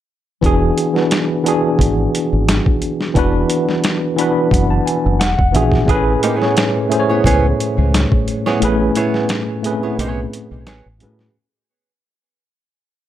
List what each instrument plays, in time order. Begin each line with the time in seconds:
0.41 fingered electric bass E1, tine electric piano E3 B3 D4 F#4, kick, closed hi-hat
0.46 tine electric piano G#4
0.78 closed hi-hat
0.94 tine electric piano E3 B3 D4 F#4, snare
0.98 tine electric piano B4
1.11 snare, closed hi-hat
1.44 tine electric piano E3 B3 D4 F#4, closed hi-hat
1.48 tine electric piano G#4
1.79 fingered electric bass G#1, kick, closed hi-hat
2.15 closed hi-hat
2.33 fingered electric bass G#1
2.49 snare, closed hi-hat
2.66 kick
2.82 closed hi-hat
3.01 snare
3.14 fingered electric bass E1, tine electric piano E3 B3 D4 F#4, kick, closed hi-hat
3.19 tine electric piano B4
3.50 closed hi-hat
3.69 snare
3.84 snare, closed hi-hat
4.16 tine electric piano E3 B3 D4 F#4 B5, closed hi-hat
4.21 tine electric piano B4
4.51 fingered electric bass F#1, tine electric piano F#5, kick, closed hi-hat
4.70 tine electric piano A5
4.86 tine electric piano G#5, closed hi-hat
5.06 fingered electric bass F#1
5.20 fingered electric bass E1, tine electric piano F#5, snare, closed hi-hat
5.38 fingered electric bass E1, tine electric piano F#5, kick
5.52 fingered electric bass A#1, tine electric piano E3 B3 D4 F#4 E5, closed hi-hat
5.56 tine electric piano G#4
5.72 kick, snare
5.86 fingered electric bass A1, tine electric piano A2 A3 C#4 G#4, kick, closed hi-hat
5.91 tine electric piano B4
6.23 nylon-string guitar A#3 D#4 G4 C5, closed hi-hat
6.36 tine electric piano A2 A3 C#4, nylon-string guitar B3 E4 G#4 C#5
6.41 tine electric piano G#4 C#5, snare
6.57 snare, closed hi-hat
6.89 tine electric piano A2 A3 C#4 G#4, closed hi-hat
6.93 tine electric piano C5
7.00 tine electric piano C#5
7.09 nylon-string guitar B3 E4 G#4 C#5
7.24 fingered electric bass C#2, nylon-string guitar B3 E4 G#4 C#5, kick, closed hi-hat
7.60 closed hi-hat
7.78 fingered electric bass C#2
7.94 snare, closed hi-hat
8.12 kick
8.28 closed hi-hat
8.46 nylon-string guitar B3 E4 G#4 C#5, snare
8.60 fingered electric bass A1, tine electric piano A2 A3 B3 G#4, closed hi-hat
8.65 tine electric piano C#4 B4
8.95 nylon-string guitar B3 E4 G#4 C#5, closed hi-hat
9.14 snare
9.29 snare, closed hi-hat
9.62 tine electric piano A2 A3 C4 G#4, closed hi-hat
9.67 tine electric piano B4
9.71 tine electric piano C#4
9.83 nylon-string guitar B3 E4 G#4 C#5
9.99 fingered electric bass B1, nylon-string guitar B3 E4 G#4 C#5, closed hi-hat
10.33 closed hi-hat
10.51 fingered electric bass B1
10.66 fingered electric bass A1, nylon-string guitar B3 F#4 G#4 C#5, snare, closed hi-hat
10.86 fingered electric bass A1
10.99 tine electric piano A2 A3 C#4 F#4 G#4, fingered electric bass A2, closed hi-hat
11.03 tine electric piano B4
11.19 snare